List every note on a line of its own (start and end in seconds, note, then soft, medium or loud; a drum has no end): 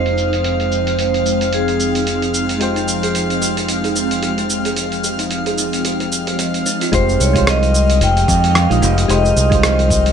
0.00 6.64 F1 medium
0.00 6.89 F3 medium
0.00 2.57 G#3 medium
0.00 6.62 G#3 medium
0.00 6.89 C4 medium
0.00 2.57 D#4 medium
0.00 6.89 D#4 medium
0.00 2.58 F4 medium
0.00 0.95 C5 medium
0.00 2.59 C5 medium
0.00 6.94 F5 medium
0.00 2.59 G5 medium
0.00 6.89 G5 medium
0.00 6.92 F6 medium
0.06 open hi-hat soft
0.06 shaker soft
0.18 shaker medium
0.33 open hi-hat soft
0.33 shaker soft
0.44 open hi-hat soft
0.44 shaker soft
0.60 open hi-hat soft
0.60 shaker soft
0.72 shaker medium
0.87 open hi-hat soft
0.87 shaker soft
0.99 1.50 C5 medium
0.99 open hi-hat soft
0.99 shaker soft
1.14 open hi-hat soft
1.14 shaker soft
1.26 shaker medium
1.41 open hi-hat soft
1.41 shaker soft
1.53 2.31 G#4 medium
1.53 open hi-hat soft
1.53 shaker soft
1.68 open hi-hat soft
1.68 shaker soft
1.80 shaker medium
1.95 open hi-hat soft
1.95 shaker soft
2.07 open hi-hat soft
2.07 shaker soft
2.22 open hi-hat soft
2.22 shaker soft
2.34 shaker medium
2.49 open hi-hat soft
2.49 shaker soft
2.58 6.62 G#3 medium
2.58 6.63 D#4 medium
2.58 6.63 F4 medium
2.58 2.75 G4 medium
2.58 6.64 G5 medium
2.58 open hi-hat soft
2.58 shaker soft
2.63 6.65 C5 medium
2.76 2.87 D#4 medium
2.76 open hi-hat soft
2.76 shaker soft
2.88 shaker medium
3.03 3.09 G#4 medium
3.03 open hi-hat soft
3.03 shaker soft
3.15 3.29 D#4 medium
3.15 open hi-hat soft
3.15 shaker soft
3.30 open hi-hat soft
3.30 shaker soft
3.42 3.56 G4 medium
3.42 shaker medium
3.57 3.68 D#4 medium
3.57 open hi-hat soft
3.57 shaker soft
3.69 open hi-hat soft
3.69 shaker soft
3.84 3.90 G#4 medium
3.84 open hi-hat soft
3.84 shaker soft
3.96 4.10 D#4 medium
3.96 shaker medium
4.11 open hi-hat soft
4.11 shaker soft
4.23 4.37 G4 medium
4.23 open hi-hat soft
4.23 shaker soft
4.38 4.49 D#4 medium
4.38 open hi-hat soft
4.38 shaker soft
4.50 shaker medium
4.65 4.72 G#4 medium
4.65 open hi-hat soft
4.65 shaker soft
4.76 4.91 D#4 medium
4.76 open hi-hat soft
4.76 shaker soft
4.92 open hi-hat soft
4.92 shaker soft
5.04 5.18 G4 medium
5.04 shaker medium
5.19 5.30 D#4 medium
5.19 open hi-hat soft
5.19 shaker soft
5.31 open hi-hat soft
5.31 shaker soft
5.46 5.53 G#4 medium
5.46 open hi-hat soft
5.46 shaker soft
5.58 5.72 D#4 medium
5.58 shaker medium
5.73 open hi-hat soft
5.73 shaker soft
5.85 5.99 G4 medium
5.85 open hi-hat soft
5.85 shaker soft
6.00 6.11 D#4 medium
6.00 open hi-hat soft
6.00 shaker soft
6.12 shaker medium
6.27 6.38 G4 medium
6.27 open hi-hat soft
6.27 shaker soft
6.39 6.53 D#5 medium
6.39 open hi-hat soft
6.39 shaker soft
6.54 open hi-hat soft
6.54 shaker soft
6.66 6.80 D#4 medium
6.66 shaker medium
6.81 6.92 F4 medium
6.81 open hi-hat soft
6.81 shaker soft
6.92 7.16 F1 medium
6.92 10.12 F3 medium
6.92 7.31 G#3 medium
6.92 10.12 G#3 medium
6.92 7.32 D#4 medium
6.92 10.12 D#4 medium
6.92 7.32 F4 medium
6.92 10.12 G4 medium
6.92 7.32 G4 medium
6.92 10.12 C5 medium
6.92 7.32 C5 loud
6.92 7.19 C5 loud
6.92 10.12 D#5 medium
6.92 10.12 F6 medium
6.92 kick loud
6.92 open hi-hat medium
6.92 shaker soft
7.09 shaker soft
7.20 8.02 C2 medium
7.20 7.46 C#5 medium
7.20 shaker medium
7.33 8.51 G#3 medium
7.33 8.52 D#4 medium
7.33 8.52 F4 medium
7.33 8.53 G4 medium
7.33 kick medium
7.33 open hi-hat soft
7.33 shaker soft
7.38 8.54 C5 medium
7.47 7.99 D#5 medium
7.47 cross-stick loud
7.47 open hi-hat medium
7.47 shaker soft
7.63 open hi-hat soft
7.63 shaker soft
7.74 shaker medium
7.90 open hi-hat soft
7.90 shaker soft
8.01 8.24 F1 medium
8.01 8.27 G5 loud
8.01 open hi-hat medium
8.01 shaker soft
8.17 open hi-hat soft
8.17 shaker soft
8.28 8.66 F2 loud
8.28 8.49 G5 medium
8.28 kick loud
8.28 shaker medium
8.44 open hi-hat soft
8.44 shaker soft
8.51 8.56 G5 medium
8.55 9.07 F5 loud
8.55 cross-stick loud
8.55 open hi-hat medium
8.55 shaker soft
8.70 8.80 A#1 medium
8.70 8.79 G#3 medium
8.70 8.79 D#4 medium
8.70 8.80 F4 medium
8.70 8.80 G4 medium
8.70 8.80 D#5 medium
8.70 open hi-hat soft
8.70 shaker soft
8.81 9.05 F1 loud
8.81 8.94 G#3 medium
8.81 8.94 D#4 medium
8.81 8.94 F4 medium
8.81 8.94 G4 medium
8.81 8.95 D#5 medium
8.81 shaker medium
8.98 open hi-hat soft
8.98 shaker soft
9.08 9.32 F1 medium
9.08 9.48 G#3 medium
9.08 9.48 D#4 medium
9.08 9.48 F4 medium
9.08 9.48 G4 medium
9.08 9.49 C5 loud
9.08 10.12 D#5 medium
9.08 open hi-hat medium
9.08 shaker soft
9.25 shaker soft
9.36 10.12 C2 medium
9.36 shaker medium
9.50 10.12 G#3 medium
9.50 10.12 D#4 medium
9.50 10.12 F4 medium
9.50 10.12 G4 medium
9.50 kick loud
9.50 open hi-hat soft
9.50 shaker soft
9.55 10.12 C5 medium
9.63 cross-stick loud
9.63 open hi-hat medium
9.63 shaker soft
9.79 open hi-hat soft
9.79 shaker soft
9.90 kick loud
9.90 shaker medium
10.06 open hi-hat soft
10.06 shaker soft